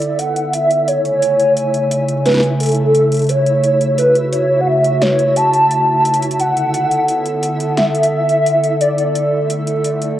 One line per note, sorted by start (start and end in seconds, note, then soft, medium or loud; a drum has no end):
0.00 0.84 D3 medium
0.00 0.84 B3 medium
0.00 10.20 E4 medium
0.00 0.84 A4 medium
0.00 0.20 D5 loud
0.00 10.20 E5 medium
0.00 closed hi-hat soft
0.19 0.55 F#5 loud
0.19 closed hi-hat medium
0.36 closed hi-hat soft
0.53 0.89 E5 loud
0.53 closed hi-hat medium
0.71 closed hi-hat soft
0.88 6.35 C#3 medium
0.88 6.35 A3 medium
0.88 2.25 C#5 loud
0.88 3.61 G#5 medium
0.88 closed hi-hat medium
1.05 closed hi-hat soft
1.22 closed hi-hat medium
1.40 closed hi-hat soft
1.57 closed hi-hat medium
1.74 closed hi-hat soft
1.91 closed hi-hat medium
2.08 closed hi-hat soft
2.26 2.40 B4 medium
2.26 snare soft
2.26 closed hi-hat medium
2.29 snare medium
2.31 snare medium
2.34 snare medium
2.37 snare medium
2.40 snare loud
2.40 closed hi-hat soft
2.60 3.31 A4 loud
2.60 closed hi-hat medium
2.63 closed hi-hat medium
2.66 closed hi-hat medium
2.69 closed hi-hat soft
2.72 closed hi-hat soft
2.75 closed hi-hat soft
2.95 closed hi-hat medium
3.12 closed hi-hat soft
3.14 closed hi-hat soft
3.17 closed hi-hat soft
3.19 closed hi-hat soft
3.22 closed hi-hat soft
3.24 closed hi-hat soft
3.27 closed hi-hat soft
3.29 4.00 C#5 loud
3.29 closed hi-hat medium
3.46 closed hi-hat soft
3.64 6.37 F#4 medium
3.64 closed hi-hat medium
3.81 closed hi-hat soft
3.98 4.34 B4 medium
3.98 closed hi-hat medium
4.15 closed hi-hat soft
4.33 4.62 C#5 loud
4.33 closed hi-hat medium
4.60 4.69 F#5 medium
4.67 5.03 E5 loud
4.84 closed hi-hat soft
5.02 5.38 C#5 loud
5.02 snare loud
5.02 closed hi-hat medium
5.19 closed hi-hat soft
5.36 6.39 A5 loud
5.36 closed hi-hat medium
5.53 closed hi-hat soft
5.71 closed hi-hat medium
6.05 closed hi-hat medium
6.14 closed hi-hat medium
6.22 closed hi-hat medium
6.31 closed hi-hat soft
6.39 10.20 D3 medium
6.39 9.13 B3 medium
6.39 10.20 A4 medium
6.39 7.39 F#5 loud
6.39 closed hi-hat medium
6.57 closed hi-hat soft
6.74 closed hi-hat medium
6.91 closed hi-hat soft
7.08 closed hi-hat medium
7.26 closed hi-hat soft
7.43 closed hi-hat medium
7.60 closed hi-hat soft
7.77 8.82 E5 loud
7.77 snare loud
7.77 closed hi-hat medium
7.95 closed hi-hat soft
8.03 closed hi-hat medium
8.29 closed hi-hat soft
8.46 closed hi-hat medium
8.64 closed hi-hat soft
8.81 9.50 D5 loud
8.81 closed hi-hat medium
8.98 closed hi-hat soft
9.15 10.20 A3 medium
9.15 closed hi-hat medium
9.50 closed hi-hat medium
9.67 closed hi-hat soft
9.84 closed hi-hat medium
10.02 closed hi-hat soft